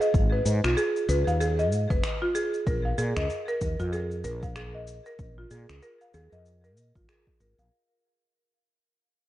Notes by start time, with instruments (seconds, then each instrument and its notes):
0.01 marimba D#5, shaker
0.14 fretless electric bass G#1, kick, shaker
0.32 marimba B4
0.45 fretless electric bass G#2, shaker
0.64 fretless electric bass B1, marimba F4, finger snap, shaker
0.77 marimba G#4, shaker
0.96 shaker
1.08 fretless electric bass C#2, marimba B4, shaker
1.27 fretless electric bass D#2, marimba F5, shaker
1.40 marimba G#4, shaker
1.59 marimba D#5, shaker
1.71 fretless electric bass G#2, shaker
1.90 fretless electric bass F1, marimba B4, kick, shaker
2.04 finger snap, shaker
2.22 marimba F4
2.35 marimba G#4, shaker
2.54 shaker
2.67 fretless electric bass A#1, marimba A#4, kick, shaker
2.85 marimba F5
2.98 fretless electric bass A#2, marimba G#4, shaker
3.16 fretless electric bass C#2, marimba D#5, finger snap, udu, shaker
3.30 shaker
3.48 marimba A#4, shaker
3.61 fretless electric bass D#2, kick, shaker
3.80 fretless electric bass F2, marimba F4, shaker
3.93 marimba G#4, shaker
4.11 shaker
4.24 fretless electric bass A#1, marimba A#4, shaker
4.43 marimba F5, kick, shaker
4.56 marimba G#4, finger snap, shaker
4.75 marimba D#5
4.88 shaker
5.06 marimba A#4, shaker
5.19 fretless electric bass A#1, kick, shaker
5.38 marimba F4
5.51 fretless electric bass A#2, marimba G#4, shaker
5.69 fretless electric bass C#2, finger snap, shaker
5.83 marimba A#4, shaker
6.01 marimba F5, shaker
6.14 fretless electric bass D#2, marimba G#4, shaker
6.32 fretless electric bass F2, marimba D#5, shaker
6.46 shaker
6.64 marimba A#4, shaker
6.77 fretless electric bass A#2, shaker
6.96 fretless electric bass G#1, marimba F4, kick, shaker
7.09 marimba G#4, finger snap, shaker
7.27 kick
7.40 fretless electric bass G#1, marimba A#4, shaker
7.58 fretless electric bass A#1, marimba F5, shaker